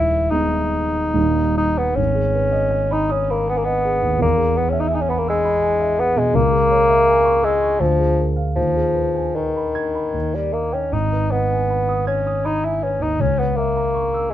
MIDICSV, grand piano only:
0, 0, Header, 1, 2, 480
1, 0, Start_track
1, 0, Key_signature, 5, "minor"
1, 0, Tempo, 834492
1, 1138, Time_signature, 3, 2, 24, 8
1, 1138, Tempo, 770218
1, 1618, Tempo, 743494
1, 2578, Tempo, 713436
1, 4978, Tempo, 780234
1, 7378, Tempo, 744417
1, 9076, End_track
2, 0, Start_track
2, 0, Title_t, "Grand piano"
2, 0, Program_c, 0, 0
2, 0, Control_c, 0, 64, 127
2, 0, Note_on_c, 0, 27, 48
2, 0, Note_on_c, 0, 39, 47
2, 178, Note_on_c, 0, 56, 39
2, 179, Note_on_c, 0, 59, 34
2, 179, Note_on_c, 0, 63, 42
2, 639, Note_off_c, 0, 56, 0
2, 639, Note_off_c, 0, 59, 0
2, 639, Note_off_c, 0, 63, 0
2, 644, Note_off_c, 0, 27, 0
2, 645, Note_off_c, 0, 39, 0
2, 656, Note_on_c, 0, 27, 40
2, 658, Note_on_c, 0, 39, 45
2, 659, Note_on_c, 0, 58, 32
2, 661, Note_on_c, 0, 55, 33
2, 665, Note_on_c, 0, 63, 36
2, 675, Control_c, 0, 64, 0
2, 784, Control_c, 0, 64, 127
2, 1113, Note_off_c, 0, 58, 0
2, 1114, Note_off_c, 0, 55, 0
2, 1116, Note_off_c, 0, 63, 0
2, 1121, Note_off_c, 0, 27, 0
2, 1121, Note_off_c, 0, 39, 0
2, 1129, Note_on_c, 0, 32, 45
2, 1151, Control_c, 0, 64, 0
2, 1243, Note_on_c, 0, 68, 37
2, 1268, Control_c, 0, 64, 127
2, 1364, Note_on_c, 0, 71, 38
2, 1443, Note_off_c, 0, 68, 0
2, 1476, Note_on_c, 0, 75, 35
2, 1562, Note_off_c, 0, 71, 0
2, 1592, Note_on_c, 0, 80, 39
2, 1679, Note_off_c, 0, 75, 0
2, 1721, Note_on_c, 0, 83, 42
2, 1800, Note_off_c, 0, 80, 0
2, 1842, Note_on_c, 0, 87, 41
2, 1925, Note_off_c, 0, 83, 0
2, 1974, Note_on_c, 0, 83, 38
2, 2045, Note_off_c, 0, 87, 0
2, 2089, Note_on_c, 0, 80, 37
2, 2171, Note_off_c, 0, 83, 0
2, 2205, Note_on_c, 0, 75, 32
2, 2288, Note_off_c, 0, 80, 0
2, 2328, Note_on_c, 0, 68, 36
2, 2405, Note_off_c, 0, 75, 0
2, 2441, Note_on_c, 0, 39, 36
2, 2524, Note_off_c, 0, 68, 0
2, 2545, Note_on_c, 0, 40, 47
2, 2546, Note_off_c, 0, 32, 0
2, 2567, Note_off_c, 0, 39, 0
2, 2588, Control_c, 0, 64, 0
2, 2669, Note_on_c, 0, 68, 36
2, 2684, Control_c, 0, 64, 127
2, 2793, Note_on_c, 0, 71, 39
2, 2872, Note_off_c, 0, 68, 0
2, 2905, Note_on_c, 0, 76, 43
2, 2993, Note_off_c, 0, 71, 0
2, 3034, Note_on_c, 0, 80, 39
2, 3109, Note_off_c, 0, 76, 0
2, 3160, Note_on_c, 0, 83, 43
2, 3232, Note_off_c, 0, 80, 0
2, 3282, Note_on_c, 0, 88, 42
2, 3354, Note_off_c, 0, 83, 0
2, 3393, Note_on_c, 0, 83, 39
2, 3474, Note_off_c, 0, 88, 0
2, 3511, Note_on_c, 0, 80, 39
2, 3589, Note_off_c, 0, 83, 0
2, 3633, Note_on_c, 0, 76, 37
2, 3708, Note_off_c, 0, 80, 0
2, 3760, Note_on_c, 0, 68, 42
2, 3829, Note_off_c, 0, 76, 0
2, 3868, Note_on_c, 0, 47, 42
2, 3953, Note_off_c, 0, 68, 0
2, 3958, Note_off_c, 0, 40, 0
2, 3991, Note_on_c, 0, 37, 51
2, 3995, Note_off_c, 0, 47, 0
2, 4013, Control_c, 0, 64, 0
2, 4113, Note_on_c, 0, 68, 39
2, 4131, Control_c, 0, 64, 127
2, 4242, Note_on_c, 0, 73, 43
2, 4310, Note_off_c, 0, 68, 0
2, 4359, Note_on_c, 0, 76, 38
2, 4435, Note_off_c, 0, 73, 0
2, 4488, Note_on_c, 0, 80, 48
2, 4553, Note_off_c, 0, 76, 0
2, 4600, Note_on_c, 0, 85, 46
2, 4680, Note_off_c, 0, 80, 0
2, 4730, Note_on_c, 0, 88, 46
2, 4799, Note_off_c, 0, 85, 0
2, 4858, Note_on_c, 0, 85, 40
2, 4928, Note_off_c, 0, 88, 0
2, 4945, Note_off_c, 0, 37, 0
2, 4977, Note_on_c, 0, 38, 44
2, 4981, Note_off_c, 0, 85, 0
2, 4987, Control_c, 0, 64, 0
2, 5092, Note_on_c, 0, 68, 34
2, 5103, Control_c, 0, 64, 127
2, 5209, Note_on_c, 0, 70, 33
2, 5281, Note_off_c, 0, 68, 0
2, 5323, Note_on_c, 0, 77, 34
2, 5400, Note_off_c, 0, 70, 0
2, 5435, Note_off_c, 0, 38, 0
2, 5446, Note_off_c, 0, 77, 0
2, 5447, Note_on_c, 0, 39, 37
2, 5462, Control_c, 0, 64, 0
2, 5564, Control_c, 0, 64, 127
2, 5569, Note_on_c, 0, 68, 34
2, 5680, Note_on_c, 0, 71, 32
2, 5764, Note_off_c, 0, 68, 0
2, 5807, Note_on_c, 0, 80, 30
2, 5880, Note_off_c, 0, 71, 0
2, 5933, Note_on_c, 0, 71, 33
2, 6005, Note_off_c, 0, 80, 0
2, 6062, Note_on_c, 0, 83, 32
2, 6128, Note_off_c, 0, 71, 0
2, 6176, Note_on_c, 0, 92, 33
2, 6253, Note_off_c, 0, 83, 0
2, 6299, Note_on_c, 0, 83, 29
2, 6369, Note_off_c, 0, 92, 0
2, 6392, Note_off_c, 0, 39, 0
2, 6412, Note_on_c, 0, 39, 31
2, 6418, Note_off_c, 0, 83, 0
2, 6430, Control_c, 0, 64, 0
2, 6522, Note_on_c, 0, 70, 27
2, 6528, Control_c, 0, 64, 127
2, 6650, Note_on_c, 0, 75, 27
2, 6725, Note_off_c, 0, 70, 0
2, 6775, Note_on_c, 0, 79, 30
2, 6849, Note_off_c, 0, 75, 0
2, 6885, Note_off_c, 0, 39, 0
2, 6896, Note_on_c, 0, 32, 36
2, 6899, Note_off_c, 0, 79, 0
2, 6913, Control_c, 0, 64, 0
2, 7007, Control_c, 0, 64, 127
2, 7020, Note_on_c, 0, 71, 28
2, 7141, Note_on_c, 0, 75, 32
2, 7210, Note_off_c, 0, 71, 0
2, 7257, Note_on_c, 0, 80, 30
2, 7329, Note_off_c, 0, 75, 0
2, 7375, Note_on_c, 0, 83, 31
2, 7448, Note_off_c, 0, 80, 0
2, 7495, Note_on_c, 0, 87, 32
2, 7571, Note_off_c, 0, 83, 0
2, 7615, Note_on_c, 0, 92, 33
2, 7692, Note_off_c, 0, 87, 0
2, 7741, Note_on_c, 0, 87, 31
2, 7813, Note_off_c, 0, 92, 0
2, 7856, Note_on_c, 0, 83, 31
2, 7937, Note_off_c, 0, 87, 0
2, 7979, Note_on_c, 0, 80, 28
2, 8053, Note_off_c, 0, 83, 0
2, 8100, Note_on_c, 0, 71, 29
2, 8174, Note_off_c, 0, 80, 0
2, 8210, Note_on_c, 0, 39, 27
2, 8293, Note_off_c, 0, 71, 0
2, 8315, Note_off_c, 0, 32, 0
2, 8337, Note_off_c, 0, 39, 0
2, 8340, Note_on_c, 0, 37, 37
2, 8355, Control_c, 0, 64, 0
2, 8466, Note_on_c, 0, 73, 28
2, 8471, Control_c, 0, 64, 127
2, 8587, Note_on_c, 0, 76, 33
2, 8656, Note_off_c, 0, 73, 0
2, 8707, Note_on_c, 0, 82, 34
2, 8775, Note_off_c, 0, 76, 0
2, 8822, Note_on_c, 0, 85, 34
2, 8894, Note_off_c, 0, 82, 0
2, 8950, Note_on_c, 0, 88, 34
2, 9011, Note_off_c, 0, 85, 0
2, 9076, Note_off_c, 0, 37, 0
2, 9076, Note_off_c, 0, 88, 0
2, 9076, End_track
0, 0, End_of_file